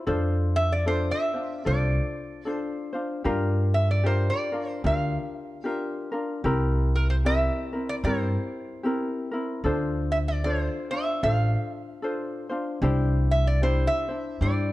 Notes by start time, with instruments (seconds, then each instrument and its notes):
0.07 upright bass F2, ukulele D4 F4 A4 C5
0.56 resonator guitar played with a steel bar E5
0.72 resonator guitar played with a steel bar D5
0.86 ukulele D4 F4 A4 C5, resonator guitar played with a steel bar C5
1.11 resonator guitar played with a steel bar E5
1.34 ukulele D4 F4 C5
1.65 upright bass C2, ukulele D4 F4 A4 C5, resonator guitar played with a steel bar D5
2.45 ukulele D4 F4 A4 C5
2.51 resonator guitar played with a steel bar C5
2.93 ukulele D4 F4 C5
3.24 upright bass G2, ukulele D4 F4 G4 A#4
3.74 resonator guitar played with a steel bar E5
3.91 resonator guitar played with a steel bar D5
4.03 ukulele D4 F4 G4 A#4, resonator guitar played with a steel bar C5
4.30 resonator guitar played with a steel bar D5
4.52 ukulele D4 F4 A#4
4.70 resonator guitar played with a steel bar C5
4.84 upright bass D2, ukulele D4 F4 G4 A#4, resonator guitar played with a steel bar F5
5.64 ukulele D4 F4 G4 A#4, resonator guitar played with a steel bar E5
6.12 ukulele D4 F4 A#4
6.44 upright bass C2, ukulele C4 E4 G4 A#4
6.96 resonator guitar played with a steel bar A#4
7.10 resonator guitar played with a steel bar C5
7.25 ukulele C4 E4 G4 A#4, resonator guitar played with a steel bar E5
7.73 ukulele C4 E4 A#4
7.89 resonator guitar played with a steel bar D5
8.04 upright bass G2, ukulele C4 E4 G4 A#4, resonator guitar played with a steel bar C5
8.83 ukulele C4 E4 G4 A#4
9.31 ukulele C4 E4 A#4
9.64 upright bass D2, ukulele D4 F4 A4 C5
10.12 resonator guitar played with a steel bar E5
10.28 resonator guitar played with a steel bar D5
10.44 ukulele D4 F4 A4 C5, resonator guitar played with a steel bar C#5
10.63 resonator guitar played with a steel bar C5
10.91 ukulele D4 F4 C5, resonator guitar played with a steel bar E5
11.23 upright bass A1, ukulele D4 F4 A4 C5, resonator guitar played with a steel bar F5
12.02 ukulele D4 F4 A4 C5
12.49 ukulele D4 F4 C5
12.82 upright bass C2, ukulele D4 E4 G4 C5
13.31 resonator guitar played with a steel bar E5
13.47 resonator guitar played with a steel bar D5
13.62 ukulele D4 E4 G4 C5, resonator guitar played with a steel bar C5
13.87 resonator guitar played with a steel bar E5
14.08 ukulele D4 E4 C5
14.41 upright bass G2, ukulele D4 E4 G4 C5, resonator guitar played with a steel bar D5